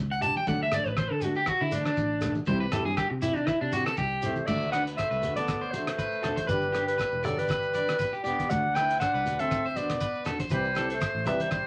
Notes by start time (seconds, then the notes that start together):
Already playing: C#2
0.11 F#5
0.21 D4 G4 A5, closed hi-hat, low conga, shekere
0.35 G5, high conga, shekere
0.46 D2 F#3 A3 D4 A4 F#5, kick, shekere
0.63 E5
0.72 A3 D4 A4 D5, cross-stick, closed hi-hat, high conga, shekere
0.86 A1 B4, shekere
0.97 C5, kick, cross-stick, shekere
1.11 D3 A4
1.21 A3 D4 F#4 A4, closed hi-hat, shekere
1.35 G4, shekere
1.46 F#4, kick, cross-stick, shekere
1.61 D3 E4
1.71 A3 D4 A4, closed hi-hat, high conga, shekere
1.85 D4, cross-stick, shekere
1.97 A1, kick, shekere
2.21 A3 D4 A4, cross-stick, closed hi-hat, low conga, shekere
2.35 high conga, shekere
2.46 C2 G3 C4 E4 G4 C5, kick, low conga, shekere
2.60 B4
2.72 C4 E4 G4 A4, cross-stick, closed hi-hat, high conga, low conga, shekere
2.85 G2 G#4
2.97 G4, kick, cross-stick, shekere
3.10 C3, muted clean electric guitar stroke
3.21 C4 E4 G4, closed hi-hat, high conga, low conga, shekere
3.36 D4, shekere
3.47 E4, kick, cross-stick, shekere
3.61 C3 D4
3.72 C4 E4 F#4 G4, closed hi-hat, high conga, shekere
3.85 A4, cross-stick, shekere
3.97 C2 G4, kick, shekere
4.22 A3 C4 E4 G4 C5, closed hi-hat, low conga, shekere
4.36 high conga, shekere
4.46 D2 A3 D4 F#4 D5 E5, kick, crash, shekere
4.61 shekere
4.72 D4 F#4 B4 F#5, cross-stick, closed hi-hat, shekere
4.76 D4
4.87 closed hi-hat, shekere
4.97 A3 C5 E5, kick, cross-stick, closed hi-hat, shekere
5.11 C2 B4, shekere
5.22 D2 D4 F#4, closed hi-hat, low conga, shekere
5.36 B3 A4 D5, closed hi-hat, high conga, shekere
5.48 kick, cross-stick, closed hi-hat, shekere
5.61 C5, shekere
5.71 F#4 C5, closed hi-hat, high conga, shekere
5.75 A3 D4
5.87 cross-stick, closed hi-hat, shekere
5.99 B4, kick, closed hi-hat, shekere
6.12 shekere
6.22 D4 F#4 A4, cross-stick, closed hi-hat, low conga, shekere
6.36 C5, kick, closed hi-hat, high conga
6.47 G1 G3 B3 D4 G4 B4, kick, closed hi-hat, shekere
6.62 shekere
6.72 D4 G4, cross-stick, closed hi-hat, shekere
6.87 G3 B4, closed hi-hat, shekere
6.98 B4, kick, cross-stick, closed hi-hat, shekere
7.12 E1, shekere
7.23 G1 F#3 D4 G4 A4 D5, closed hi-hat, low conga, shekere
7.36 G3 B4, closed hi-hat, high conga, shekere
7.48 B4, kick, cross-stick, closed hi-hat, shekere
7.62 shekere
7.74 D4 D5, closed hi-hat, high conga, shekere
7.87 cross-stick, closed hi-hat, shekere
7.99 B4, kick, closed hi-hat, shekere
8.13 G4, shekere
8.23 B3 D4 G4 D5, closed hi-hat, low conga, shekere
8.39 kick, closed hi-hat, high conga
8.49 D2 A3 D4 F#4 F#5, muted clean electric guitar stroke, kick, closed hi-hat, shekere
8.75 D4 E4 B4 G5, cross-stick, closed hi-hat, shekere
8.89 closed hi-hat, shekere
9.00 D4 C5 F#5, kick, cross-stick, closed hi-hat, shekere
9.14 C2 B4, shekere
9.25 D2 D4 F#4, closed hi-hat, low conga, shekere
9.39 C4 A4 E5, closed hi-hat, high conga, shekere
9.51 kick, cross-stick, closed hi-hat, shekere
9.64 C5, shekere
9.69 C4 E5
9.75 B3 D4 F#4 D5, closed hi-hat, high conga, shekere
9.90 cross-stick, closed hi-hat, low conga, shekere
10.00 B4, kick, closed hi-hat, shekere
10.14 shekere
10.25 F#4 A4, cross-stick, closed hi-hat, low conga, shekere
10.29 D4
10.39 C5, kick, closed hi-hat, high conga
10.49 C2 E3 C4 E4 G4 B4 C5, kick, closed hi-hat, shekere
10.56 G3
10.64 shekere
10.75 C4 E4 G4 A4, cross-stick, closed hi-hat, shekere
10.89 A3 C5, closed hi-hat, shekere
11.01 C5, kick, cross-stick, closed hi-hat, shekere
11.14 A1
11.25 C2 G3 C4 E4 G4 B4 E5, closed hi-hat, high conga, low conga, shekere
11.40 G3 C5, closed hi-hat, high conga, shekere
11.51 C5, kick, cross-stick, closed hi-hat, shekere